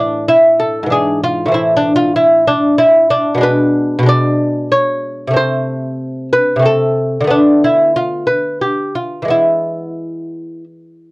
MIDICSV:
0, 0, Header, 1, 2, 480
1, 0, Start_track
1, 0, Key_signature, 0, "minor"
1, 0, Tempo, 626959
1, 1172, Time_signature, 3, 2, 24, 8
1, 2123, Tempo, 645856
1, 5963, Tempo, 684932
1, 8189, End_track
2, 0, Start_track
2, 0, Title_t, "Lute"
2, 0, Program_c, 0, 24
2, 0, Note_on_c, 0, 45, 48
2, 0, Note_on_c, 0, 52, 39
2, 0, Note_on_c, 0, 62, 71
2, 196, Note_off_c, 0, 62, 0
2, 217, Note_on_c, 0, 64, 72
2, 446, Note_off_c, 0, 64, 0
2, 456, Note_on_c, 0, 69, 74
2, 630, Note_off_c, 0, 45, 0
2, 635, Note_on_c, 0, 44, 50
2, 641, Note_off_c, 0, 52, 0
2, 660, Note_on_c, 0, 52, 41
2, 686, Note_off_c, 0, 69, 0
2, 690, Note_on_c, 0, 62, 40
2, 704, Note_on_c, 0, 68, 65
2, 929, Note_off_c, 0, 68, 0
2, 946, Note_on_c, 0, 65, 71
2, 1115, Note_on_c, 0, 45, 53
2, 1125, Note_off_c, 0, 52, 0
2, 1128, Note_off_c, 0, 44, 0
2, 1134, Note_on_c, 0, 52, 45
2, 1156, Note_off_c, 0, 62, 0
2, 1160, Note_on_c, 0, 60, 45
2, 1169, Note_off_c, 0, 65, 0
2, 1180, Note_on_c, 0, 64, 63
2, 1328, Note_off_c, 0, 64, 0
2, 1351, Note_on_c, 0, 62, 66
2, 1492, Note_off_c, 0, 62, 0
2, 1498, Note_on_c, 0, 65, 77
2, 1644, Note_off_c, 0, 65, 0
2, 1653, Note_on_c, 0, 64, 65
2, 1876, Note_off_c, 0, 64, 0
2, 1896, Note_on_c, 0, 62, 75
2, 2120, Note_off_c, 0, 62, 0
2, 2131, Note_on_c, 0, 64, 76
2, 2362, Note_off_c, 0, 64, 0
2, 2369, Note_on_c, 0, 62, 74
2, 2545, Note_off_c, 0, 45, 0
2, 2548, Note_on_c, 0, 47, 58
2, 2568, Note_off_c, 0, 52, 0
2, 2571, Note_on_c, 0, 56, 48
2, 2581, Note_off_c, 0, 60, 0
2, 2586, Note_off_c, 0, 62, 0
2, 2595, Note_on_c, 0, 62, 50
2, 2611, Note_on_c, 0, 71, 83
2, 3015, Note_off_c, 0, 47, 0
2, 3024, Note_on_c, 0, 47, 64
2, 3046, Note_off_c, 0, 56, 0
2, 3055, Note_on_c, 0, 56, 50
2, 3070, Note_off_c, 0, 62, 0
2, 3073, Note_off_c, 0, 71, 0
2, 3079, Note_on_c, 0, 62, 48
2, 3097, Note_on_c, 0, 74, 89
2, 3545, Note_off_c, 0, 74, 0
2, 3567, Note_on_c, 0, 73, 79
2, 3971, Note_off_c, 0, 47, 0
2, 3980, Note_on_c, 0, 48, 51
2, 3987, Note_off_c, 0, 56, 0
2, 4000, Note_off_c, 0, 62, 0
2, 4005, Note_on_c, 0, 57, 48
2, 4020, Note_off_c, 0, 73, 0
2, 4026, Note_on_c, 0, 60, 47
2, 4048, Note_on_c, 0, 72, 91
2, 4731, Note_off_c, 0, 72, 0
2, 4763, Note_on_c, 0, 71, 75
2, 4927, Note_off_c, 0, 48, 0
2, 4936, Note_on_c, 0, 48, 49
2, 4951, Note_off_c, 0, 57, 0
2, 4962, Note_off_c, 0, 60, 0
2, 4962, Note_on_c, 0, 57, 43
2, 4984, Note_on_c, 0, 60, 39
2, 4991, Note_off_c, 0, 71, 0
2, 5007, Note_on_c, 0, 69, 71
2, 5413, Note_off_c, 0, 48, 0
2, 5416, Note_on_c, 0, 50, 53
2, 5434, Note_off_c, 0, 57, 0
2, 5440, Note_off_c, 0, 60, 0
2, 5443, Note_on_c, 0, 57, 44
2, 5467, Note_off_c, 0, 69, 0
2, 5468, Note_on_c, 0, 59, 46
2, 5491, Note_on_c, 0, 62, 69
2, 5717, Note_off_c, 0, 62, 0
2, 5741, Note_on_c, 0, 64, 71
2, 5963, Note_off_c, 0, 64, 0
2, 5977, Note_on_c, 0, 65, 68
2, 6191, Note_off_c, 0, 65, 0
2, 6194, Note_on_c, 0, 71, 65
2, 6418, Note_off_c, 0, 71, 0
2, 6436, Note_on_c, 0, 67, 65
2, 6662, Note_off_c, 0, 67, 0
2, 6673, Note_on_c, 0, 65, 50
2, 6854, Note_off_c, 0, 50, 0
2, 6862, Note_on_c, 0, 52, 42
2, 6867, Note_off_c, 0, 57, 0
2, 6878, Note_off_c, 0, 59, 0
2, 6881, Note_on_c, 0, 56, 32
2, 6903, Note_on_c, 0, 59, 36
2, 6905, Note_off_c, 0, 65, 0
2, 6919, Note_on_c, 0, 64, 53
2, 7853, Note_off_c, 0, 64, 0
2, 8189, Note_off_c, 0, 52, 0
2, 8189, Note_off_c, 0, 56, 0
2, 8189, Note_off_c, 0, 59, 0
2, 8189, End_track
0, 0, End_of_file